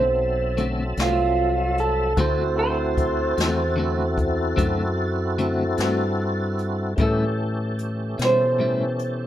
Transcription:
Already playing: fingered electric bass B1, tonewheel organ F#3 C4 A4 E5, electric slide guitar C5
0.57 clean electric guitar D3 A3 C4 F#4, closed hi-hat
0.97 fingered electric bass C2, clean electric guitar A3 C4 F#4, snare, closed hi-hat
1.01 clean electric guitar F4
1.78 clean electric guitar A4, closed hi-hat
2.16 fingered electric bass D2, clean electric guitar D3 A3 C4 F#4, tonewheel organ C4 E4 F#4 A4, kick, closed hi-hat
2.21 clean electric guitar C5
2.59 clean electric guitar C5
2.97 kick, closed hi-hat
3.37 fingered electric bass E2, clean electric guitar A3 C4 F#4, snare, closed hi-hat
3.76 clean electric guitar D3 A3 C4 F#4
4.18 kick, closed hi-hat
4.56 fingered electric bass F#2, clean electric guitar D3 A3 C4 F#4, kick, closed hi-hat
5.38 clean electric guitar D3 A3 C4 F#4, closed hi-hat
5.78 fingered electric bass G2, clean electric guitar A3 C4 F#4, snare, closed hi-hat
6.59 closed hi-hat
6.96 fingered electric bass A2, clean electric guitar A2 G3, tonewheel organ E3 C#4 G4 A4, kick, closed hi-hat
7.00 clean electric guitar C#4 E4, electric slide guitar A4
7.78 closed hi-hat
8.18 fingered electric bass B2, clean electric guitar G3 C#4 E4, snare, closed hi-hat
8.25 electric slide guitar C5
8.59 clean electric guitar A2 G3 C#4 E4
8.99 closed hi-hat

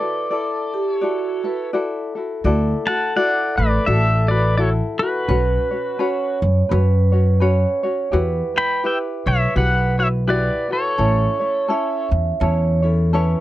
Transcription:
Already playing: pedal steel guitar A4 D5, vibraphone B4
0.00 ukulele E4 F#4 A4
0.30 ukulele E4 A4 D5, vibraphone A4
0.74 vibraphone G4
0.93 pedal steel guitar C#5
1.01 ukulele E4 F#4 A4 D5, vibraphone F#4
1.44 ukulele E4 F#4 A4, vibraphone B4
1.73 ukulele E4 F#4 A4 D5, vibraphone A4
2.15 ukulele E4 F#4 A4
2.44 upright bass D2, ukulele E4 F#4 A4 D5, vibraphone A4
2.86 ukulele E4 F#4 A4, pedal steel guitar F#5 A5
3.16 ukulele E4 F#4 A4 D5, pedal steel guitar D5 F#5
3.58 upright bass A1, pedal steel guitar B4 D5
3.86 upright bass A1, ukulele E4 F#4 A4 D5, pedal steel guitar A4 E5
4.27 ukulele E4 F#4 A4, pedal steel guitar B4 D5
4.57 ukulele E4 F#4 A4, pedal steel guitar A4 C#5
4.99 ukulele E4 F#4 A4, pedal steel guitar F#4 B4
5.28 upright bass B1, ukulele C#4 F#4 B4 C#5, vibraphone B4
5.71 ukulele C#4 F#4 C#5
5.99 ukulele C#4 F#4 B4 C#5, vibraphone C#5
6.42 upright bass F#2
6.69 upright bass F#2, ukulele C#4 F#4 B4 C#5, vibraphone B4
7.12 ukulele C#4 F#4 C#5
7.40 ukulele C#4 F#4 B4 C#5, vibraphone C#5
7.83 ukulele C#4 F#4 C#5
8.12 upright bass E2, ukulele E4 F#4 G4 B4, vibraphone B4
8.54 ukulele E4 B4, pedal steel guitar G5 B5
8.84 ukulele E4 G4 B4, pedal steel guitar E5 G5
9.26 upright bass B1, pedal steel guitar C#5 E5
9.55 upright bass B1, ukulele E4 F#4 G4 B4, pedal steel guitar B4 F#5
9.98 ukulele E4 F#4 B4, pedal steel guitar C#5 E5
10.27 ukulele E4 F#4 G4 B4, pedal steel guitar B4 D5
10.68 ukulele E4 F#4 B4, pedal steel guitar A4
10.73 pedal steel guitar C#5
10.98 upright bass A1, ukulele C#4 E4 A4 C#5, vibraphone C#5
11.40 ukulele C#4 E4 C#5
11.68 ukulele C#4 E4 A4 C#5, vibraphone E5
12.11 upright bass E2
12.40 upright bass E2, ukulele C#4 E4 A4 C#5, vibraphone C#5
12.82 ukulele C#4 E4 C#5, vibraphone A4
13.13 ukulele C#4 E4 A4 C#5, vibraphone B4

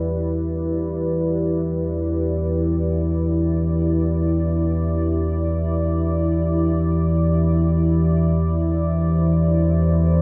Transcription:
Already playing: synth drone E2 E3, ambient pad E4 G4 B4 D5
8.23 ambient pad C5
9.19 ambient pad A4

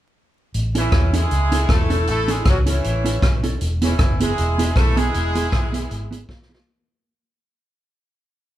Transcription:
0.54 fingered electric bass A1, closed hi-hat
0.75 horn section E3 C#4 E4, clean electric guitar C#4 E4 A4 C#5, closed hi-hat
0.92 fingered electric bass E2, kick, cross-stick, closed hi-hat
1.13 horn section G#3 E4 G#4, clean electric guitar C#4 E4 A4 C#5, closed hi-hat
1.31 fingered electric bass C#2, closed hi-hat
1.52 clean electric guitar C#4 E4 A4 C#5, closed hi-hat
1.69 fingered electric bass E1, horn section A3 E4 A4, kick, cross-stick, closed hi-hat
1.90 clean electric guitar C#4 E4 A4 C#5, closed hi-hat
2.07 fingered electric bass A1, horn section A3 E4 A4, closed hi-hat
2.28 horn section G#3 E4 G#4, clean electric guitar C#4 E4 A4 C#5, closed hi-hat
2.45 fingered electric bass C#2, horn section F#3 C#4 F#4, kick, cross-stick, closed hi-hat
2.66 horn section E3 E4, clean electric guitar C#4 E4 A4 C#5, closed hi-hat
2.70 horn section C#4
2.84 fingered electric bass A1, closed hi-hat
3.04 clean electric guitar C#4 E4 A4 C#5, closed hi-hat
3.22 fingered electric bass B1, kick, cross-stick, closed hi-hat
3.43 clean electric guitar C#4 E4 A4 C#5, closed hi-hat
3.61 fingered electric bass E1, closed hi-hat
3.82 horn section E3 C#4 E4, clean electric guitar B3 E4 G#4 B4, closed hi-hat
3.99 fingered electric bass F#1, kick, cross-stick, closed hi-hat
4.20 horn section G#3 E4 G#4, clean electric guitar B3 E4 G#4 B4, closed hi-hat
4.38 fingered electric bass E1, closed hi-hat
4.58 clean electric guitar B3 E4 G#4 B4, closed hi-hat
4.75 fingered electric bass B1, horn section A3 E4 A4, kick, cross-stick, closed hi-hat
4.96 horn section G#3 E4 G#4, clean electric guitar B3 E4 G#4 B4, closed hi-hat
5.14 fingered electric bass E1, closed hi-hat
5.35 clean electric guitar B3 E4 G#4 B4, closed hi-hat
5.52 fingered electric bass B1, kick, cross-stick, closed hi-hat
5.72 clean electric guitar B3 E4 G#4 B4, closed hi-hat
5.91 fingered electric bass G#1, closed hi-hat
6.11 clean electric guitar B3 E4 G#4 B4, closed hi-hat
6.29 fingered electric bass B1, kick, snare
6.42 snare
6.49 clean electric guitar B3 E4 G#4 B4
6.54 snare

